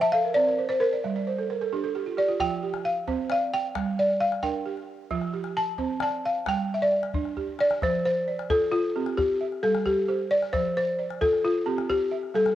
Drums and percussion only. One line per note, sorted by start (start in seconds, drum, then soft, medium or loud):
2.40 calabash thump medium
2.74 calabash click soft
2.86 calabash click soft
3.08 calabash thump medium
3.08 calabash click soft
3.30 calabash click medium
3.75 calabash thump medium
3.75 calabash click medium
3.98 calabash click soft
4.09 calabash click soft
4.20 calabash click soft
4.32 calabash click soft
4.42 calabash thump medium
4.42 calabash click soft
4.77 calabash click soft
5.11 calabash thump medium
5.11 calabash click soft
5.21 calabash click soft
5.44 calabash click soft
5.78 calabash thump medium
6.00 calabash click medium
6.46 calabash thump medium
6.46 calabash click medium
6.57 calabash click soft
6.70 calabash click soft
7.03 calabash click soft
7.14 calabash thump medium
7.25 calabash click soft
7.37 calabash thump soft
7.48 calabash thump soft
7.59 calabash click soft
7.71 calabash click soft
7.82 calabash thump medium
7.82 calabash click soft
8.39 calabash click soft
8.50 calabash thump medium
8.62 calabash click soft
9.06 calabash click soft
9.18 calabash thump medium
9.52 calabash click soft
9.63 calabash click soft
9.75 calabash click soft
9.86 calabash thump medium
10.42 calabash click soft
10.53 calabash thump medium
10.53 calabash click soft
11.10 calabash click soft
11.22 calabash thump medium
11.33 calabash click soft
11.78 calabash click soft
11.90 calabash thump medium
12.23 calabash click soft
12.35 calabash click soft
12.46 calabash click soft